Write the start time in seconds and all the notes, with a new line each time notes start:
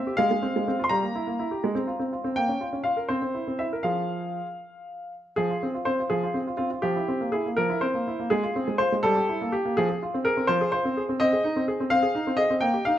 Already playing: E5
0.07 G4
0.17 G#3 F5
0.31 G#3
0.42 C4
0.56 G#3
0.68 C4
0.79 F4
0.84 C6
0.89 G3 A#5
1.03 A#3
1.15 E4
1.27 A#3
1.39 E4
1.51 G4
1.64 G#3
1.75 C4
1.87 F4
1.99 C4
2.13 F4
2.24 C4
2.36 A#3 G5
2.48 C#4
2.61 F4
2.73 C#4
2.84 F4 F5
2.97 A#4
3.08 C4 C5
3.22 C4
3.34 E4
3.47 C4
3.59 E4 E5
3.73 A#4
3.83 F3 F4 G#4 F5
5.36 F3 G#4
5.50 F4
5.63 C4
5.74 F4
5.85 C4 C5
6.00 F4
6.10 F3 G#4
6.23 F4
6.34 C4
6.47 F4
6.57 C4 F4
6.71 F4
6.82 F3 G4
6.96 E4
7.08 C4
7.21 A#3
7.32 E4 G#4
7.46 A#3
7.57 F3 A#4
7.70 E4
7.81 C4 C5
7.94 A#3
8.07 E4
8.20 A#3
8.30 G#3 G#4
8.43 F4
8.56 C4
8.68 G#3
8.78 F4 C5
8.92 G#3
9.03 G3 A4
9.16 G4
9.29 E4
9.41 A#3
9.52 G4
9.65 A#3
9.77 F3 G#4
9.89 G#4
10.03 F4
10.14 C4
10.25 G#4 A#4
10.37 C4
10.47 F3 C5
10.61 G#4
10.72 F4 C5
10.85 C4
10.97 G#4
11.09 C4
11.20 C4 D#5
11.33 G#4
11.44 D#4
11.56 C4
11.68 G#4
11.80 C4
11.90 C4 F5
12.03 G#4
12.15 D#4
12.27 C4
12.37 G#4 D#5
12.50 C4
12.61 A#3 G5
12.74 G4
12.85 D#4 F5